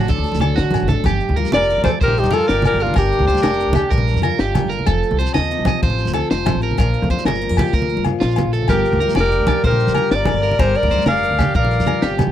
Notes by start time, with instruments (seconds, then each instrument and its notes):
Already playing: steel-string acoustic guitar F#3 A4
0.08 steel-string acoustic guitar D3 D4, clean electric guitar A4, kick, closed hi-hat, low conga
0.18 upright bass D2
0.24 steel-string acoustic guitar A4, closed hi-hat, low conga, shekere
0.32 upright bass D2, high conga, shekere
0.39 steel-string acoustic guitar F#3, clean electric guitar A4, closed hi-hat, low conga, low agogo
0.56 upright bass D3, clean electric guitar F#4, snare, closed hi-hat
0.64 low conga
0.71 steel-string acoustic guitar A2, closed hi-hat, high conga, low agogo
0.75 shekere
0.80 upright bass A1, low conga
0.88 steel-string acoustic guitar D4, clean electric guitar A4, kick, closed hi-hat, low conga
0.96 low conga
1.04 upright bass G1, steel-string acoustic guitar G2, clean electric guitar G4, kick, closed hi-hat, high conga, low conga, low agogo, shekere
1.15 shekere
1.19 closed hi-hat, low conga
1.29 upright bass D2, low conga
1.36 steel-string acoustic guitar G3 F4, clean electric guitar A#4, closed hi-hat
1.45 high conga, shekere
1.52 upright bass F1, clean electric guitar D5, alto saxophone D5, snare, closed hi-hat, low conga, low agogo
1.56 trumpet A#4
1.62 shekere
1.69 steel-string acoustic guitar D3 A#4, closed hi-hat, low conga
1.77 upright bass D2, low conga
1.84 alto saxophone C5, clean electric guitar D5, kick, closed hi-hat, high conga, low conga, low agogo, shekere
1.88 trumpet A4
2.01 upright bass A#1, steel-string acoustic guitar G2, trumpet G4, alto saxophone A#4, clean electric guitar C5, kick, closed hi-hat
2.08 low conga
2.18 trumpet D#4, alto saxophone G4, closed hi-hat, shekere
2.24 upright bass F2, high conga, shekere
2.31 steel-string acoustic guitar G3 F4, trumpet F4, alto saxophone A4, clean electric guitar A#4, closed hi-hat, low conga, low agogo
2.48 upright bass G1, trumpet G4, alto saxophone A#4, clean electric guitar D5, snare, closed hi-hat
2.62 closed hi-hat, low conga, low agogo, shekere
2.67 steel-string acoustic guitar D3 F4, trumpet G4, alto saxophone A#4
2.74 upright bass G1
2.80 trumpet D4, alto saxophone F4, clean electric guitar A#4, closed hi-hat
2.87 low conga
2.94 upright bass G1, steel-string acoustic guitar G2, clean electric guitar A#4, kick, closed hi-hat, high conga, low conga, low agogo, shekere
2.98 trumpet D4, alto saxophone G4
3.11 closed hi-hat, low conga
3.19 upright bass D2, low conga
3.28 steel-string acoustic guitar G3 F4, clean electric guitar C5, kick, snare, closed hi-hat
3.35 high conga, shekere
3.43 upright bass F1, clean electric guitar A#4, snare, closed hi-hat, low conga, low agogo
3.53 shekere
3.59 steel-string acoustic guitar D3, muted steel-string acoustic guitar stroke, closed hi-hat, low conga
3.66 upright bass D2, low conga
3.73 clean electric guitar G4, kick, closed hi-hat, high conga, low conga, low agogo, shekere
3.90 upright bass A#1, steel-string acoustic guitar G2, clean electric guitar A#4, kick, closed hi-hat
3.98 low conga
4.07 closed hi-hat, shekere
4.14 upright bass F2, high conga, shekere
4.22 steel-string acoustic guitar G3 F4, clean electric guitar A#4, closed hi-hat, low conga, low agogo
4.39 upright bass G1, clean electric guitar G4, snare, closed hi-hat
4.55 steel-string acoustic guitar D3 A#4, closed hi-hat, high conga, low conga, low agogo, shekere
4.64 upright bass G1
4.69 clean electric guitar A#4, closed hi-hat
4.79 low conga
4.86 upright bass F1, steel-string acoustic guitar F3, clean electric guitar A4, kick, closed hi-hat, high conga, low conga, low agogo, shekere
5.03 closed hi-hat, low conga
5.11 upright bass C2, low conga
5.19 steel-string acoustic guitar C4 A4, clean electric guitar C5, closed hi-hat
5.26 shekere
5.34 upright bass D#2, clean electric guitar D#5, snare, closed hi-hat, low conga, low agogo
5.44 shekere
5.50 steel-string acoustic guitar C3 A4, closed hi-hat, low conga
5.58 upright bass C2, low conga
5.65 clean electric guitar D#5, kick, closed hi-hat, high conga, low conga, low agogo, shekere
5.83 upright bass A1, steel-string acoustic guitar F3, clean electric guitar C5, kick, closed hi-hat
5.90 low conga
5.99 closed hi-hat, shekere
6.05 upright bass D2, high conga, shekere
6.13 steel-string acoustic guitar C4 A4, clean electric guitar A4, closed hi-hat, low conga, low agogo
6.31 upright bass F1, clean electric guitar C5, snare, closed hi-hat
6.46 steel-string acoustic guitar C3 A4, closed hi-hat, high conga, low conga, low agogo, shekere
6.55 upright bass A1
6.61 clean electric guitar A#4, closed hi-hat
6.71 low conga
6.78 upright bass A#1, steel-string acoustic guitar A#2 F3 D4 F4 A#4, clean electric guitar A#4, kick, closed hi-hat, high conga, low agogo, shekere
6.88 low conga
6.94 closed hi-hat, low conga
7.02 upright bass F2, low conga
7.10 steel-string acoustic guitar F3 F4, clean electric guitar C5, kick, closed hi-hat, low conga, shekere
7.19 high conga, shekere
7.25 upright bass G1, clean electric guitar A#4, snare, closed hi-hat, low conga, low agogo
7.35 shekere
7.41 steel-string acoustic guitar A#2 G4, closed hi-hat
7.49 upright bass F2, steel-string acoustic guitar A#4, low conga
7.57 clean electric guitar G4, kick, closed hi-hat, high conga, low conga, low agogo, shekere
7.67 shekere
7.73 upright bass D2, steel-string acoustic guitar A#2, clean electric guitar A#4, kick, closed hi-hat, shekere
7.82 low conga
7.89 closed hi-hat, low conga
7.97 upright bass G2, high conga, low conga
8.05 steel-string acoustic guitar F3 F4, closed hi-hat, low conga, low agogo, shekere
8.20 upright bass A#1, steel-string acoustic guitar C3, clean electric guitar F4, snare, closed hi-hat
8.31 low conga, shekere
8.36 steel-string acoustic guitar A#2, closed hi-hat, high conga, low conga, low agogo, shekere
8.44 upright bass A#1, low conga
8.53 steel-string acoustic guitar A2, clean electric guitar A4, closed hi-hat, low conga, shekere
8.62 low conga
8.68 upright bass G1, steel-string acoustic guitar G2, clean electric guitar G4, trumpet G4, alto saxophone A#4, kick, closed hi-hat, high conga, low conga, low agogo, shekere
8.78 shekere
8.85 closed hi-hat, low conga
8.92 upright bass D2, low conga
9.00 steel-string acoustic guitar G3 F4, clean electric guitar A#4, snare, closed hi-hat
9.08 high conga, shekere
9.15 upright bass F1, clean electric guitar D5, snare, closed hi-hat, low conga, low agogo
9.20 trumpet G4, alto saxophone A#4
9.25 shekere
9.32 steel-string acoustic guitar D3 F4, closed hi-hat, low conga
9.39 upright bass D2, low conga
9.47 clean electric guitar D5, kick, closed hi-hat, high conga, low conga, low agogo
9.64 upright bass A#1, steel-string acoustic guitar G2, alto saxophone A#4, clean electric guitar C5, kick, closed hi-hat
9.69 trumpet G4, low conga
9.80 closed hi-hat, shekere
9.87 upright bass F2, high conga, shekere
9.95 steel-string acoustic guitar G3 F4, clean electric guitar A#4, closed hi-hat, low conga, low agogo
10.11 upright bass G1, clean electric guitar D5, alto saxophone D5, snare, closed hi-hat
10.17 trumpet A#4
10.25 steel-string acoustic guitar D3 A#4, closed hi-hat, high conga, low conga, low agogo
10.34 upright bass G1
10.43 clean electric guitar A#4, closed hi-hat
10.51 low conga
10.59 upright bass G1, steel-string acoustic guitar G2, clean electric guitar A#4, alto saxophone C5, kick, closed hi-hat, high conga, low conga, low agogo, shekere
10.64 trumpet G4
10.69 shekere
10.75 trumpet A#4, alto saxophone D5, closed hi-hat, low conga
10.83 upright bass D2, low conga
10.91 steel-string acoustic guitar G3 F4, clean electric guitar C5, kick, snare, closed hi-hat
10.98 high conga, shekere
11.06 upright bass F1, clean electric guitar A#4, alto saxophone F5, snare, closed hi-hat, low conga, low agogo
11.11 trumpet D5
11.17 shekere
11.23 steel-string acoustic guitar D3 A#4, closed hi-hat, low conga
11.31 upright bass D2, low conga
11.39 clean electric guitar G4, kick, closed hi-hat, high conga, low conga, low agogo, shekere
11.54 upright bass A#1, steel-string acoustic guitar G2, clean electric guitar A#4, trumpet D5, alto saxophone F5, kick, closed hi-hat
11.65 low conga
11.71 closed hi-hat, shekere
11.80 upright bass F2, high conga, shekere
11.86 steel-string acoustic guitar G3 F4, clean electric guitar A#4, closed hi-hat, low conga, low agogo
12.02 upright bass G1, steel-string acoustic guitar C3, clean electric guitar G4, snare, closed hi-hat
12.18 steel-string acoustic guitar D3, closed hi-hat, high conga, low conga, low agogo, shekere
12.27 upright bass E1